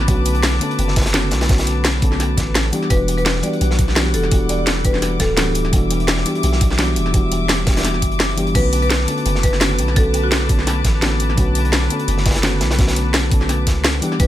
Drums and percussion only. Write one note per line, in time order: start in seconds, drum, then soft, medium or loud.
0.08 kick loud
0.08 closed hi-hat medium
0.25 closed hi-hat medium
0.35 closed hi-hat soft
0.43 snare loud
0.43 closed hi-hat medium
0.52 snare soft
0.61 closed hi-hat medium
0.71 closed hi-hat soft
0.79 closed hi-hat medium
0.88 snare medium
0.96 kick loud
0.96 snare medium
0.96 closed hi-hat medium
1.01 snare medium
1.01 closed hi-hat medium
1.06 snare loud
1.06 snare soft
1.06 closed hi-hat medium
1.14 snare loud
1.14 closed hi-hat medium
1.31 snare medium
1.31 closed hi-hat medium
1.41 snare loud
1.41 snare soft
1.41 closed hi-hat medium
1.49 kick loud
1.49 snare loud
1.49 closed hi-hat medium
1.58 snare loud
1.58 closed hi-hat medium
1.67 closed hi-hat medium
1.85 snare loud
1.85 closed hi-hat medium
2.02 kick loud
2.02 closed hi-hat medium
2.02 open hi-hat medium
2.12 snare soft
2.20 snare medium
2.20 closed hi-hat medium
2.37 kick medium
2.37 snare soft
2.37 closed hi-hat medium
2.55 snare loud
2.55 closed hi-hat medium
2.73 closed hi-hat medium
2.83 snare soft
2.90 kick loud
2.90 closed hi-hat medium
3.08 closed hi-hat medium
3.18 closed hi-hat soft
3.26 snare loud
3.26 closed hi-hat medium
3.36 snare soft
3.43 closed hi-hat medium
3.53 closed hi-hat soft
3.61 closed hi-hat medium
3.71 snare medium
3.79 kick loud
3.79 closed hi-hat medium
3.88 snare soft
3.96 snare loud
3.96 closed hi-hat medium
4.14 closed hi-hat medium
4.23 snare soft
4.31 kick loud
4.31 closed hi-hat medium
4.49 closed hi-hat medium
4.67 snare loud
4.67 closed hi-hat medium
4.85 kick loud
4.85 closed hi-hat medium
4.85 open hi-hat medium
4.94 snare soft
5.02 snare soft
5.02 closed hi-hat medium
5.20 kick medium
5.20 snare medium
5.20 closed hi-hat medium
5.20 closed hi-hat loud
5.37 snare loud
5.37 closed hi-hat medium
5.55 closed hi-hat medium
5.65 snare soft
5.73 kick loud
5.73 closed hi-hat medium
5.73 closed hi-hat loud
5.91 closed hi-hat loud
5.91 closed hi-hat medium
6.00 closed hi-hat soft
6.08 snare loud
6.08 closed hi-hat medium
6.17 snare soft
6.26 closed hi-hat medium
6.35 closed hi-hat soft
6.43 closed hi-hat medium
6.52 snare soft
6.61 kick loud
6.61 closed hi-hat loud
6.61 closed hi-hat medium
6.71 snare soft
6.79 snare loud
6.79 closed hi-hat medium
6.96 closed hi-hat loud
6.96 closed hi-hat medium
7.06 snare soft
7.14 kick loud
7.14 closed hi-hat medium
7.32 closed hi-hat loud
7.32 closed hi-hat medium
7.49 snare loud
7.49 closed hi-hat medium
7.67 kick loud
7.67 snare loud
7.67 closed hi-hat medium
7.67 open hi-hat medium
7.76 snare soft
7.76 snare medium
7.76 closed hi-hat medium
7.81 snare medium
7.81 closed hi-hat medium
7.85 snare medium
7.85 closed hi-hat medium
7.94 snare soft
8.02 kick medium
8.02 closed hi-hat medium
8.02 closed hi-hat loud
8.12 closed hi-hat soft
8.20 snare loud
8.20 closed hi-hat medium
8.30 snare soft
8.37 closed hi-hat medium
8.47 closed hi-hat soft
8.55 kick loud
8.55 closed hi-hat medium
8.55 crash medium
8.73 closed hi-hat loud
8.73 closed hi-hat medium
8.82 closed hi-hat soft
8.90 snare loud
8.90 closed hi-hat medium
9.00 snare soft
9.08 closed hi-hat loud
9.08 closed hi-hat medium
9.18 closed hi-hat soft
9.25 closed hi-hat medium
9.35 snare medium
9.43 kick loud
9.43 closed hi-hat loud
9.43 closed hi-hat medium
9.53 snare soft
9.61 snare loud
9.61 closed hi-hat medium
9.79 closed hi-hat loud
9.79 closed hi-hat medium
9.88 snare soft
9.96 kick loud
9.96 closed hi-hat medium
10.14 closed hi-hat medium
10.14 closed hi-hat loud
10.32 snare loud
10.32 closed hi-hat medium
10.49 kick loud
10.49 closed hi-hat medium
10.49 open hi-hat medium
10.59 snare soft
10.67 snare medium
10.67 closed hi-hat medium
10.84 kick medium
10.84 snare medium
10.84 closed hi-hat medium
10.84 closed hi-hat loud
11.02 snare loud
11.02 closed hi-hat medium
11.20 closed hi-hat medium
11.29 snare soft
11.37 kick loud
11.37 closed hi-hat medium
11.55 closed hi-hat medium
11.65 closed hi-hat soft
11.72 snare loud
11.72 closed hi-hat medium
11.82 snare soft
11.90 closed hi-hat medium
11.99 closed hi-hat soft
12.08 closed hi-hat medium
12.18 snare medium
12.26 kick loud
12.26 snare medium
12.26 closed hi-hat medium
12.31 snare loud
12.31 closed hi-hat medium
12.35 snare loud
12.35 snare soft
12.35 closed hi-hat medium
12.43 snare loud
12.43 closed hi-hat medium
12.61 snare loud
12.61 closed hi-hat medium
12.70 snare loud
12.70 snare soft
12.70 closed hi-hat medium
12.79 kick loud
12.79 snare medium
12.79 closed hi-hat medium
12.88 snare medium
12.88 closed hi-hat medium
12.96 closed hi-hat medium
13.14 snare loud
13.14 closed hi-hat medium
13.31 kick loud
13.31 closed hi-hat medium
13.31 open hi-hat medium
13.41 snare soft
13.49 snare medium
13.49 closed hi-hat medium
13.67 kick medium
13.67 snare medium
13.67 closed hi-hat medium
13.84 snare loud
13.84 closed hi-hat medium
14.02 closed hi-hat medium
14.12 snare soft
14.20 kick loud
14.20 closed hi-hat medium